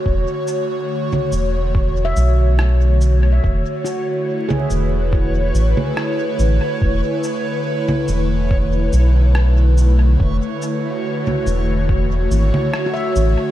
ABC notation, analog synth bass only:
X:1
M:4/4
L:1/8
Q:"Swing 16ths" 1/4=71
K:Emix
V:1 name="Analog synth bass" clef=bass
E,,, z2 E,,,2 B,,,3 | E,,, z2 E,,,2 A,,, z A,,, | E,,, z2 E,,,2 B,,,3 | E,,, z2 E,,,2 G,,, z A,,, |]